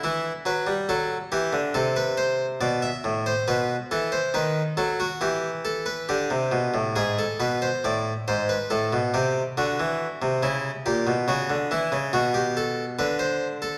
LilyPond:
<<
  \new Staff \with { instrumentName = "Harpsichord" } { \time 4/4 \key b \phrygian \tempo 4 = 70 e'8 b'8 a'8 g'8 a'16 b'16 c''8 d''16 e''8 c''16 | b'8 a'16 c''16 b'8 a'16 fis'16 g'8 a'16 b'16 g'4 | gis'16 a'16 b'16 c''16 d''8 c''16 b'16 a'8 g'8 fis'4 | e'8 g'8 fis'8 e'8 fis'16 g'16 a'8 b'16 c''8 a'16 | }
  \new Staff \with { instrumentName = "Harpsichord" } { \clef bass \time 4/4 \key b \phrygian e8 fis16 g16 fis8 e16 d16 c4 b,8 a,8 | b,8 e8 dis8 fis8 e4 d16 c16 b,16 a,16 | gis,8 b,8 a,8 gis,8 a,16 b,16 c8 d16 e8 c16 | cis8 ais,16 b,16 cis16 d16 e16 cis16 b,4 d4 | }
>>